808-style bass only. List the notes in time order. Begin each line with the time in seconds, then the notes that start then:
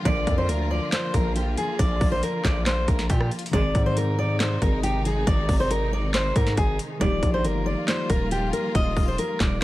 0.05 A#1
0.27 F2
0.49 D2
1.14 A#1
1.79 A#1
2.01 A#1
2.44 A#1
2.88 A#1
3.10 A#2
3.53 G#1
3.75 G#2
4.62 G#1
5.27 G#1
5.49 G#1
6.36 G#2
6.58 G#1
7.01 D#1
7.23 A#1
7.44 G1
8.10 D#1
8.75 D#1
8.97 D#1
9.40 D#1